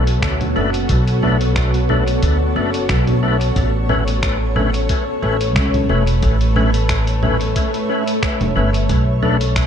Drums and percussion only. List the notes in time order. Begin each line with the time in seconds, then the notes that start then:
0.07 closed hi-hat
0.23 finger snap, kick, closed hi-hat
0.41 closed hi-hat, low conga
0.74 closed hi-hat
0.89 kick, closed hi-hat
1.08 closed hi-hat
1.23 low conga
1.41 closed hi-hat
1.56 finger snap, kick, closed hi-hat
1.74 closed hi-hat
1.89 low conga
2.08 closed hi-hat
2.23 kick, closed hi-hat
2.74 closed hi-hat
2.89 finger snap, kick, closed hi-hat
3.07 closed hi-hat, low conga
3.41 closed hi-hat
3.56 kick, closed hi-hat
3.89 low conga
4.08 closed hi-hat
4.23 finger snap, kick, closed hi-hat
4.56 low conga
4.74 closed hi-hat
4.89 kick, closed hi-hat
5.41 closed hi-hat
5.56 finger snap, kick, closed hi-hat
5.74 closed hi-hat, low conga
6.07 closed hi-hat
6.22 kick, closed hi-hat
6.41 closed hi-hat
6.56 low conga
6.74 closed hi-hat
6.89 finger snap, kick, closed hi-hat
7.07 closed hi-hat
7.23 low conga
7.41 closed hi-hat
7.56 kick, closed hi-hat
7.74 closed hi-hat
8.08 closed hi-hat
8.23 finger snap, kick, closed hi-hat
8.41 closed hi-hat, low conga
8.74 closed hi-hat
8.89 kick, closed hi-hat
9.23 low conga
9.41 closed hi-hat
9.56 finger snap, kick, closed hi-hat